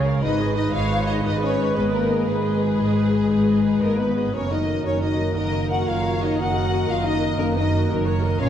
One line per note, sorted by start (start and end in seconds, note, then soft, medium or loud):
0.00 0.17 C#2 medium
0.00 0.17 C#3 medium
0.00 0.19 C#3 soft
0.00 0.19 G#3 soft
0.00 0.19 C#5 soft
0.06 0.23 G#4 soft
0.06 0.23 A#4 medium
0.06 0.23 F5 soft
0.22 0.67 G#1 medium
0.22 0.68 G#2 medium
0.22 4.13 D#3 medium
0.22 4.13 G#3 soft
0.22 0.39 D#4 soft
0.22 0.55 D#4 medium
0.22 0.39 B4 medium
0.22 4.13 B4 medium
0.22 0.74 B4 medium
0.22 0.54 D#5 medium
0.40 0.57 G#4 soft
0.40 0.57 D#5 soft
0.56 0.73 D#4 soft
0.56 0.64 D#4 medium
0.56 0.73 B4 soft
0.56 0.76 D#5 medium
0.56 0.73 D#5 medium
0.72 1.18 G#1 medium
0.72 1.18 G#2 medium
0.72 1.07 F4 medium
0.72 0.90 G#4 medium
0.72 1.23 C#5 medium
0.72 0.90 D#5 soft
0.72 1.06 F5 medium
0.72 1.08 F5 medium
0.89 1.05 D#4 soft
0.89 1.05 B4 soft
1.05 1.22 D#4 medium
1.05 1.23 G#4 soft
1.05 1.23 D#5 soft
1.05 1.24 D#5 medium
1.05 1.14 D#5 medium
1.23 1.70 G#1 medium
1.23 1.69 G#2 medium
1.23 1.40 D#4 medium
1.23 1.41 D#4 soft
1.23 1.41 B4 soft
1.23 2.26 B4 medium
1.23 1.41 D#5 medium
1.41 1.75 C#4 medium
1.41 1.58 G#4 soft
1.41 1.75 C#5 medium
1.41 1.77 C#5 medium
1.41 1.58 D#5 soft
1.58 1.74 D#4 soft
1.58 1.74 B4 soft
1.74 2.21 G#1 medium
1.74 2.21 G#2 medium
1.74 1.93 B3 medium
1.74 1.92 G#4 soft
1.74 1.95 B4 medium
1.74 1.83 B4 medium
1.74 1.92 D#5 soft
1.92 2.27 A#3 medium
1.92 2.10 D#4 soft
1.92 2.27 A#4 medium
1.92 2.10 B4 soft
2.09 2.27 G#4 soft
2.09 2.27 D#5 soft
2.27 2.73 G#1 medium
2.27 2.73 G#2 soft
2.27 3.80 G#3 medium
2.27 2.43 D#4 soft
2.27 3.82 G#4 medium
2.27 3.58 G#4 medium
2.27 2.43 B4 soft
2.27 4.05 B4 soft
2.45 2.62 G#4 soft
2.45 2.62 D#5 soft
2.62 2.79 D#4 soft
2.62 2.79 B4 soft
2.78 3.24 G#1 soft
2.78 3.24 G#2 soft
2.78 2.96 G#4 soft
2.78 2.96 D#5 soft
2.96 3.12 D#4 soft
2.96 3.12 B4 soft
3.14 3.31 G#4 soft
3.14 3.31 D#5 soft
3.30 3.76 G#1 soft
3.30 3.76 G#2 medium
3.30 3.48 D#4 soft
3.30 3.48 B4 soft
3.47 3.65 G#4 soft
3.47 3.65 D#5 soft
3.64 3.81 D#4 soft
3.64 3.81 B4 soft
3.82 4.28 G#1 soft
3.82 4.28 G#2 soft
3.82 3.99 A#3 medium
3.82 4.00 G#4 soft
3.82 3.99 A#4 medium
3.82 4.00 D#5 soft
3.99 4.34 B3 medium
3.99 4.17 D#4 soft
3.99 4.16 B4 soft
3.99 4.33 B4 soft
3.99 4.36 B4 soft
4.17 4.34 G#4 soft
4.17 4.34 D#5 soft
4.33 4.79 F#1 medium
4.33 4.79 F#2 soft
4.33 8.38 D#3 soft
4.33 8.37 A#3 soft
4.33 4.51 C#4 medium
4.33 4.50 F#4 soft
4.33 8.37 A#4 soft
4.33 4.49 A#4 soft
4.33 4.53 C#5 medium
4.33 4.51 C#5 medium
4.50 4.84 D#4 medium
4.50 4.66 F#4 soft
4.50 4.66 A#4 soft
4.50 4.85 D#5 medium
4.50 4.86 D#5 medium
4.67 4.84 F#4 soft
4.67 4.83 A#4 soft
4.85 5.30 F#1 soft
4.85 5.31 F#2 medium
4.85 5.02 C#4 medium
4.85 4.99 F#4 soft
4.85 4.99 A#4 soft
4.85 5.02 C#5 medium
5.00 5.35 D#4 medium
5.00 5.17 F#4 soft
5.00 5.17 A#4 soft
5.00 5.35 D#5 medium
5.00 5.36 D#5 medium
5.18 5.34 F#4 soft
5.18 5.34 A#4 soft
5.35 5.81 F#1 medium
5.35 5.82 F#2 medium
5.35 5.69 D#4 medium
5.35 5.52 F#4 soft
5.35 5.52 A#4 soft
5.35 5.84 A#4 medium
5.35 5.70 D#5 medium
5.53 5.68 F#4 soft
5.53 5.68 A#4 soft
5.69 5.85 F#4 soft
5.69 5.88 F#4 medium
5.69 5.86 A#4 soft
5.69 5.87 F#5 medium
5.69 5.77 F#5 medium
5.87 6.32 F#1 soft
5.87 6.33 F#2 medium
5.87 6.21 F4 medium
5.87 6.03 F#4 soft
5.87 6.02 A#4 soft
5.87 6.38 C#5 medium
5.87 6.21 F5 medium
5.87 6.22 F5 medium
6.04 6.19 F#4 soft
6.04 6.19 A#4 soft
6.20 6.38 D#4 medium
6.20 6.37 F#4 soft
6.20 6.38 A#4 soft
6.20 6.39 D#5 medium
6.20 6.41 D#5 medium
6.38 6.83 F#1 medium
6.38 6.83 F#2 medium
6.38 6.54 F#4 soft
6.38 6.89 F#4 medium
6.38 6.54 A#4 soft
6.38 7.91 D#5 soft
6.38 6.88 F#5 medium
6.38 6.72 F#5 medium
6.56 6.71 F#4 soft
6.56 6.71 A#4 soft
6.72 6.88 F#4 soft
6.72 6.88 A#4 soft
6.89 7.34 F#1 medium
6.89 7.34 F#2 medium
6.89 7.06 F4 medium
6.89 7.05 F#4 medium
6.89 7.05 A#4 medium
6.89 7.07 F5 medium
6.89 7.06 F5 medium
7.05 7.39 D#4 medium
7.05 7.22 F#4 soft
7.05 7.22 A#4 soft
7.05 7.40 D#5 medium
7.05 7.39 D#5 medium
7.23 7.38 F#4 soft
7.23 7.38 A#4 soft
7.39 7.84 F#1 medium
7.39 7.84 F#2 medium
7.39 7.56 A#3 medium
7.39 7.55 F#4 soft
7.39 7.46 A#4 medium
7.39 7.55 A#4 soft
7.39 7.58 A#4 medium
7.56 7.90 D#4 medium
7.56 7.71 F#4 medium
7.56 7.71 A#4 soft
7.56 7.90 D#5 medium
7.56 7.91 D#5 medium
7.73 7.89 F#4 medium
7.73 7.89 A#4 medium
7.90 8.35 F#1 medium
7.90 8.35 F#2 medium
7.90 8.06 F#4 medium
7.90 8.06 A#4 medium
7.90 8.07 A#4 medium
8.07 8.23 F#4 medium
8.07 8.23 A#4 medium
8.07 8.24 C#5 medium
8.24 8.41 F#4 soft
8.24 8.41 A#4 medium
8.24 8.41 D#5 medium
8.40 8.49 A#1 medium
8.40 8.49 A#2 medium
8.40 8.49 F3 medium
8.40 8.49 A#3 medium
8.40 8.49 C#4 medium
8.40 8.49 F4 medium
8.40 8.49 A#4 medium
8.40 8.49 C#5 medium
8.40 8.49 F5 medium